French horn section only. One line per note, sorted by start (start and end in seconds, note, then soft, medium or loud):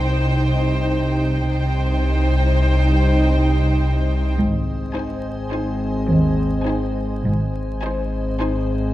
0.00 1.34 G3 soft
0.00 1.34 D#4 soft
1.51 4.34 G3 soft
1.51 4.34 D#4 soft
4.38 7.21 G#3 medium
4.38 7.21 C4 medium
7.26 8.94 G#3 medium
7.26 8.94 C4 medium